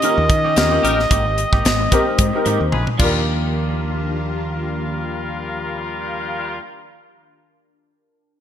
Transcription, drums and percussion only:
0.02 closed hi-hat medium
0.30 kick loud
0.30 closed hi-hat medium
0.56 snare loud
0.56 closed hi-hat medium
0.85 closed hi-hat medium
1.00 snare soft
1.11 kick loud
1.11 closed hi-hat medium
1.38 closed hi-hat medium
1.53 kick medium
1.65 snare loud
1.65 closed hi-hat medium
1.92 kick medium
1.92 closed hi-hat medium
2.18 kick medium
2.18 closed hi-hat medium
2.46 closed hi-hat medium
2.72 high tom medium
2.87 mid tom medium
2.99 kick loud
2.99 crash medium

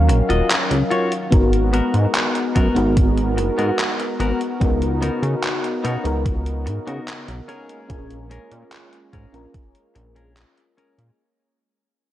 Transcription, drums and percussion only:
0.09 closed hi-hat medium
0.30 closed hi-hat soft
0.50 clap loud
0.50 closed hi-hat medium
0.71 closed hi-hat soft
0.91 closed hi-hat soft
1.12 closed hi-hat soft
1.32 kick loud
1.32 closed hi-hat medium
1.53 closed hi-hat soft
1.74 closed hi-hat medium
1.94 closed hi-hat soft
2.15 clap loud
2.15 closed hi-hat loud
2.35 closed hi-hat soft
2.56 kick medium
2.56 closed hi-hat medium
2.76 closed hi-hat soft
2.97 kick loud
2.97 closed hi-hat loud
3.18 closed hi-hat soft
3.38 closed hi-hat medium
3.59 closed hi-hat soft
3.79 clap loud
3.79 closed hi-hat medium
4.00 closed hi-hat soft
4.20 closed hi-hat soft
4.41 closed hi-hat soft
4.61 kick loud
4.61 closed hi-hat medium
4.82 closed hi-hat soft
5.02 closed hi-hat medium
5.23 closed hi-hat soft
5.43 clap loud
5.43 closed hi-hat medium
5.64 closed hi-hat soft
5.85 closed hi-hat medium
6.05 closed hi-hat soft
6.26 kick loud
6.26 closed hi-hat medium
6.46 closed hi-hat soft
6.67 closed hi-hat medium
6.88 closed hi-hat soft
7.08 clap loud
7.08 closed hi-hat medium
7.28 closed hi-hat soft
7.49 closed hi-hat soft
7.69 closed hi-hat soft
7.90 kick loud
7.90 closed hi-hat medium
8.11 closed hi-hat soft
8.31 closed hi-hat medium
8.52 closed hi-hat soft
8.72 clap loud
8.72 closed hi-hat medium
8.93 closed hi-hat soft
9.13 kick medium
9.13 closed hi-hat medium
9.34 closed hi-hat soft
9.54 kick loud
9.54 closed hi-hat medium
9.75 closed hi-hat soft
9.96 closed hi-hat medium
10.16 closed hi-hat soft
10.37 clap loud
10.37 closed hi-hat medium
10.57 closed hi-hat soft
10.78 closed hi-hat soft
10.99 closed hi-hat soft

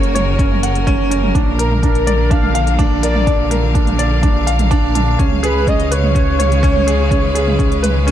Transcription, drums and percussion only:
0.03 closed hi-hat soft
0.16 closed hi-hat medium
0.16 mid tom medium
0.39 kick loud
0.39 closed hi-hat soft
0.51 mid tom medium
0.63 closed hi-hat medium
0.75 closed hi-hat soft
0.87 kick loud
0.87 closed hi-hat soft
0.87 mid tom medium
1.11 closed hi-hat medium
1.23 mid tom medium
1.35 kick loud
1.35 closed hi-hat soft
1.35 mid tom medium
1.59 closed hi-hat medium
1.71 mid tom medium
1.83 kick loud
1.83 closed hi-hat soft
1.95 closed hi-hat soft
2.07 closed hi-hat medium
2.07 mid tom medium
2.31 kick loud
2.31 closed hi-hat soft
2.43 mid tom medium
2.55 closed hi-hat medium
2.67 closed hi-hat soft
2.79 kick loud
2.79 closed hi-hat soft
2.79 mid tom medium
3.03 closed hi-hat medium
3.15 mid tom medium
3.27 kick loud
3.27 closed hi-hat soft
3.51 closed hi-hat medium
3.51 mid tom medium
3.75 kick loud
3.75 closed hi-hat soft
3.87 closed hi-hat soft
3.87 mid tom medium
3.99 closed hi-hat medium
4.23 kick loud
4.23 closed hi-hat soft
4.23 mid tom medium
4.47 closed hi-hat medium
4.59 closed hi-hat soft
4.59 mid tom medium
4.71 kick medium
4.71 closed hi-hat soft
4.95 closed hi-hat medium
4.95 mid tom medium
5.19 kick loud
5.19 closed hi-hat soft
5.31 mid tom medium
5.44 closed hi-hat medium
5.67 kick loud
5.67 closed hi-hat soft
5.67 mid tom medium
5.80 closed hi-hat soft
5.92 closed hi-hat medium
6.04 mid tom medium
6.15 kick loud
6.15 closed hi-hat soft
6.40 closed hi-hat medium
6.40 mid tom medium
6.52 closed hi-hat soft
6.63 kick loud
6.63 closed hi-hat soft
6.76 mid tom medium
6.88 closed hi-hat medium
7.11 kick loud
7.11 closed hi-hat soft
7.11 mid tom medium
7.35 closed hi-hat medium
7.48 mid tom medium
7.59 kick loud
7.59 closed hi-hat soft
7.72 closed hi-hat soft
7.84 closed hi-hat medium
7.84 mid tom medium
8.08 closed hi-hat soft

